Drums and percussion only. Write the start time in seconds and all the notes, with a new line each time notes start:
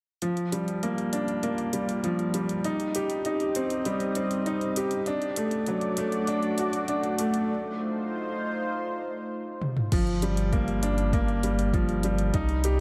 0.22 closed hi-hat
0.37 closed hi-hat
0.52 closed hi-hat
0.68 closed hi-hat
0.83 closed hi-hat
0.98 closed hi-hat
1.13 closed hi-hat
1.28 closed hi-hat
1.43 closed hi-hat
1.58 closed hi-hat
1.73 closed hi-hat
1.89 closed hi-hat
2.04 closed hi-hat
2.19 closed hi-hat
2.34 closed hi-hat
2.49 closed hi-hat
2.64 closed hi-hat
2.80 closed hi-hat
2.95 closed hi-hat
3.10 closed hi-hat
3.25 closed hi-hat
3.40 closed hi-hat
3.55 closed hi-hat
3.70 closed hi-hat
3.85 closed hi-hat
4.00 closed hi-hat
4.15 closed hi-hat
4.31 closed hi-hat
4.46 closed hi-hat
4.61 closed hi-hat
4.76 closed hi-hat
4.91 closed hi-hat
5.06 closed hi-hat
5.22 closed hi-hat
5.36 closed hi-hat
5.51 closed hi-hat
5.66 closed hi-hat
5.81 closed hi-hat
5.97 closed hi-hat
6.12 closed hi-hat
6.27 closed hi-hat
6.43 closed hi-hat
6.58 closed hi-hat
6.73 closed hi-hat
6.88 closed hi-hat
7.03 closed hi-hat
7.19 closed hi-hat
7.34 closed hi-hat
9.62 high tom
9.77 mid tom
9.92 kick, closed hi-hat, crash
10.07 closed hi-hat
10.22 closed hi-hat
10.37 closed hi-hat
10.53 kick, closed hi-hat
10.68 closed hi-hat
10.83 closed hi-hat
10.98 closed hi-hat
11.13 kick, closed hi-hat
11.28 closed hi-hat
11.43 closed hi-hat
11.59 closed hi-hat
11.73 kick, closed hi-hat
11.89 closed hi-hat
12.03 closed hi-hat
12.18 closed hi-hat
12.34 kick, closed hi-hat
12.49 closed hi-hat
12.64 closed hi-hat